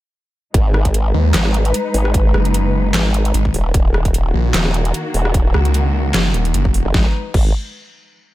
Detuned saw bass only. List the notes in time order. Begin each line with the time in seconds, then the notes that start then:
1.14 D#2
2.34 F#1
3.34 G#1
4.34 A#1
5.54 C#2
6.14 F#1
6.34 D#1
6.54 F#1
6.74 E1